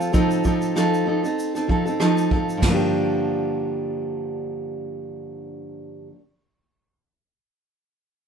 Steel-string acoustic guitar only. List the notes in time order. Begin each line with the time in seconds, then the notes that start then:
Already playing: F3 C4 F4 A4
0.13 F3 C4 D#4 A4
0.44 F3 C4 D#4 A4
0.75 F3 C4 D#4 A4
1.06 F3 C4 D#4 A4
1.24 C4 D#4 A4
1.55 C4 D#4 A4
1.68 F3 C4 D#4 A4
1.85 C4 D#4 A4
2.00 F3 C4 D#4 A4
2.30 F3 C4 D#4 A4
2.57 G2
2.62 D3 F3
2.68 A#3 D4
2.74 G4